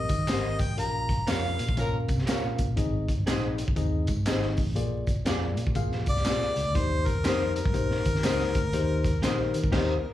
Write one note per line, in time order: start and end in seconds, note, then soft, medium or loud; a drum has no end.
0.00 0.12 C4 medium
0.00 0.12 G4 medium
0.00 0.12 A#4 medium
0.00 0.12 D#5 medium
0.00 0.62 D#5 loud
0.09 0.26 D#3 medium
0.09 kick medium
0.09 closed hi-hat medium
0.09 tambourine medium
0.27 0.55 G#1 medium
0.27 0.62 C4 medium
0.27 0.44 G4 medium
0.27 0.62 G4 medium
0.27 0.62 A#4 medium
0.27 0.45 C5 medium
0.27 0.62 D#5 medium
0.27 0.45 D#5 medium
0.27 snare loud
0.27 clap medium
0.27 closed hi-hat medium
0.27 tambourine medium
0.59 0.76 A1 medium
0.59 0.78 G5 medium
0.59 kick medium
0.59 closed hi-hat medium
0.59 tambourine medium
0.77 1.21 A#1 loud
0.77 1.55 A#2 medium
0.77 1.11 C#4 medium
0.77 1.11 F4 medium
0.77 1.11 A#4 medium
0.77 1.12 F5 medium
0.77 1.31 A#5 loud
0.77 closed hi-hat medium
0.77 tambourine soft
1.09 kick medium
1.09 closed hi-hat medium
1.27 1.55 F2 medium
1.27 1.61 C#4 medium
1.27 1.61 F4 medium
1.27 1.44 A#4 medium
1.27 1.61 A#4 medium
1.27 1.44 C#5 medium
1.27 1.62 F5 medium
1.27 1.45 F5 medium
1.27 1.78 F5 medium
1.27 snare loud
1.27 clap medium
1.27 closed hi-hat medium
1.27 tambourine medium
1.59 1.75 A#2 loud
1.59 closed hi-hat medium
1.59 tambourine soft
1.69 kick loud
1.77 2.09 A#2 loud
1.77 1.98 F3 medium
1.77 1.98 A#3 loud
1.77 2.11 C#4 medium
1.77 1.98 C#4 loud
1.77 2.11 F4 medium
1.77 1.98 A#4 loud
1.77 2.11 A#4 medium
1.77 2.11 F5 medium
1.77 kick loud
1.77 closed hi-hat medium
1.77 tambourine medium
2.08 2.25 C3 medium
2.08 kick medium
2.08 closed hi-hat medium
2.08 tambourine medium
2.19 snare soft
2.26 2.61 C#4 medium
2.26 2.61 F4 medium
2.26 2.43 A#4 medium
2.26 2.61 A#4 medium
2.26 2.44 C#5 medium
2.26 2.45 F5 medium
2.26 2.62 F5 medium
2.26 muted fingered electric bass stroke soft
2.26 snare loud
2.26 clap medium
2.26 closed hi-hat medium
2.26 tambourine medium
2.44 2.57 A#2 medium
2.58 2.75 A#2 medium
2.58 kick medium
2.58 closed hi-hat medium
2.58 tambourine soft
2.76 3.05 G#1 loud
2.76 3.54 G#2 medium
2.76 3.10 C4 medium
2.76 3.10 D#4 medium
2.76 3.11 G#4 medium
2.76 3.11 D#5 medium
2.76 kick loud
2.76 closed hi-hat medium
2.76 tambourine soft
3.08 kick medium
3.08 closed hi-hat medium
3.08 tambourine soft
3.18 3.26 G#1 loud
3.26 3.63 A#1 medium
3.26 3.60 C4 medium
3.26 3.60 D#4 medium
3.26 3.43 G#4 medium
3.26 3.60 G#4 medium
3.26 3.44 C5 medium
3.26 3.61 D#5 medium
3.26 3.44 D#5 medium
3.26 snare loud
3.26 clap medium
3.26 closed hi-hat medium
3.26 tambourine medium
3.58 closed hi-hat medium
3.58 tambourine medium
3.68 3.76 C2 medium
3.68 kick loud
3.76 4.04 D#2 medium
3.76 4.10 C4 medium
3.76 4.10 D#4 medium
3.76 4.10 G#4 medium
3.76 4.10 D#5 loud
3.76 kick loud
3.76 closed hi-hat medium
3.76 tambourine soft
4.07 4.24 G#2 loud
4.07 kick medium
4.07 closed hi-hat medium
4.07 tambourine medium
4.26 4.54 G#1 medium
4.26 4.60 C4 medium
4.26 4.60 D#4 medium
4.26 4.43 G#4 medium
4.26 4.60 G#4 medium
4.26 4.43 C5 medium
4.26 4.60 D#5 medium
4.26 4.44 D#5 medium
4.26 snare loud
4.26 clap medium
4.26 closed hi-hat medium
4.26 tambourine medium
4.42 snare soft
4.57 4.74 A1 medium
4.57 kick medium
4.57 open hi-hat medium
4.57 tambourine medium
4.75 5.20 A#1 loud
4.75 5.53 A#2 medium
4.75 5.09 A#3 medium
4.75 5.10 F4 medium
4.75 5.10 G#4 medium
4.75 5.10 D5 loud
4.75 closed hi-hat medium
4.75 tambourine soft
5.07 kick medium
5.07 closed hi-hat medium
5.07 tambourine soft
5.25 5.58 F2 medium
5.25 5.59 A#3 medium
5.25 5.59 F4 medium
5.25 5.42 F4 medium
5.25 5.60 G#4 medium
5.25 5.43 G#4 medium
5.25 5.60 D5 loud
5.25 5.43 D5 medium
5.25 snare loud
5.25 clap medium
5.25 closed hi-hat medium
5.25 tambourine medium
5.57 5.77 A#2 medium
5.57 closed hi-hat medium
5.57 tambourine medium
5.67 kick loud
5.75 6.03 A#1 medium
5.75 6.09 A#3 medium
5.75 6.09 F4 medium
5.75 6.09 G#4 medium
5.75 6.09 F5 loud
5.75 kick loud
5.75 closed hi-hat medium
5.75 tambourine medium
5.92 snare soft
6.06 6.23 C2 medium
6.06 6.77 D5 loud
6.06 kick medium
6.06 closed hi-hat medium
6.06 tambourine medium
6.16 snare soft
6.25 6.39 A#1 medium
6.25 6.59 A#3 medium
6.25 6.59 F4 medium
6.25 6.42 F4 medium
6.25 6.59 G#4 medium
6.25 6.42 G#4 medium
6.25 6.59 D5 medium
6.25 6.43 D5 medium
6.25 snare loud
6.25 clap medium
6.25 closed hi-hat medium
6.25 tambourine medium
6.42 snare soft
6.56 6.64 C#2 medium
6.56 closed hi-hat medium
6.56 tambourine medium
6.66 6.74 D2 medium
6.74 7.03 D#2 medium
6.74 7.52 D#3 medium
6.74 7.08 A#3 medium
6.74 7.08 D#4 medium
6.74 7.09 G4 medium
6.74 7.09 C5 medium
6.74 7.09 C5 loud
6.74 kick loud
6.74 closed hi-hat medium
6.74 tambourine soft
7.05 7.55 A#4 medium
7.05 kick medium
7.05 closed hi-hat medium
7.05 tambourine soft
7.15 7.23 D#2 loud
7.23 7.60 F2 medium
7.23 7.58 A#3 medium
7.23 7.58 D#4 medium
7.23 7.58 G4 medium
7.23 7.41 G4 medium
7.23 7.58 C5 medium
7.23 7.42 C5 medium
7.23 7.42 D#5 medium
7.23 snare loud
7.23 clap medium
7.23 closed hi-hat medium
7.23 tambourine medium
7.56 10.13 A#4 loud
7.56 closed hi-hat medium
7.56 tambourine medium
7.65 7.73 G2 medium
7.65 kick loud
7.73 8.01 A#1 loud
7.73 8.07 A#3 medium
7.73 8.07 D#4 medium
7.73 8.08 G4 medium
7.73 8.08 C5 medium
7.73 kick loud
7.73 closed hi-hat medium
7.73 tambourine medium
7.91 snare soft
8.05 8.22 D#3 medium
8.05 kick medium
8.05 closed hi-hat medium
8.05 tambourine medium
8.15 snare soft
8.23 8.52 C#2 medium
8.23 8.57 A#3 medium
8.23 8.57 D#4 medium
8.23 8.40 G4 medium
8.23 8.57 G4 medium
8.23 8.41 C5 medium
8.23 8.58 C5 medium
8.23 8.41 D#5 medium
8.23 snare loud
8.23 clap medium
8.23 closed hi-hat medium
8.23 tambourine medium
8.40 snare soft
8.55 8.71 D2 medium
8.55 kick medium
8.55 closed hi-hat medium
8.55 tambourine medium
8.73 9.17 D#2 loud
8.73 9.50 D#3 medium
8.73 9.07 A#3 medium
8.73 9.07 D#4 medium
8.73 9.07 G4 medium
8.73 9.07 C5 medium
8.73 closed hi-hat medium
9.04 kick medium
9.04 closed hi-hat medium
9.04 tambourine soft
9.22 9.51 A#1 medium
9.22 9.56 A#3 medium
9.22 9.56 D#4 medium
9.22 9.39 G4 medium
9.22 9.56 G4 medium
9.22 9.40 C5 medium
9.22 9.57 C5 medium
9.22 9.40 D#5 medium
9.22 snare loud
9.22 clap medium
9.22 closed hi-hat medium
9.22 tambourine medium
9.54 9.71 D#3 medium
9.54 closed hi-hat medium
9.54 tambourine medium
9.63 kick loud
9.71 9.94 D#2 loud
9.71 9.88 G3 loud
9.71 9.93 A#3 loud
9.71 9.88 A#3 medium
9.71 9.93 D#4 loud
9.71 9.88 D#4 loud
9.71 9.93 G4 loud
9.71 9.94 G4 loud
9.71 9.88 A#4 loud
9.71 9.94 C5 loud
9.71 9.95 D#5 loud
9.71 kick loud
9.71 snare loud
9.71 crash medium